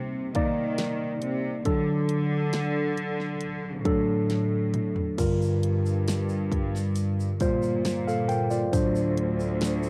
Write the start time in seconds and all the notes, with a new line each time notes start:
Already playing: C3 G3 A#3 D#4 C5
0.35 D#3 A#3 D#4 D5, kick, closed hi-hat
0.78 snare, closed hi-hat
1.22 C3, closed hi-hat
1.65 D3 F#3 D4 A4, kick, closed hi-hat
2.09 closed hi-hat
2.53 snare, closed hi-hat
2.97 closed hi-hat
3.20 snare
3.41 closed hi-hat
3.85 A2 F#3 D4 A4, kick, closed hi-hat
4.30 snare, closed hi-hat
4.74 closed hi-hat, mid tom
4.96 floor tom
5.18 G2 D3 G3 F4 A#4, kick, crash, shaker
5.42 shaker
5.63 closed hi-hat
5.86 shaker
6.08 snare, closed hi-hat, shaker
6.29 shaker
6.52 kick, closed hi-hat
6.75 snare, shaker
6.96 closed hi-hat, shaker
7.20 shaker
7.40 A#2 G3 F4 C5, kick, closed hi-hat, shaker
7.63 shaker
7.85 snare, closed hi-hat, shaker
8.07 A4 F5, shaker
8.29 A#4 G5, closed hi-hat, shaker
8.51 F4 D5, shaker
8.73 D2 A2 F#3 D4 C5, kick, closed hi-hat, shaker
8.96 shaker
9.18 closed hi-hat
9.40 shaker
9.61 snare, closed hi-hat, shaker
9.83 shaker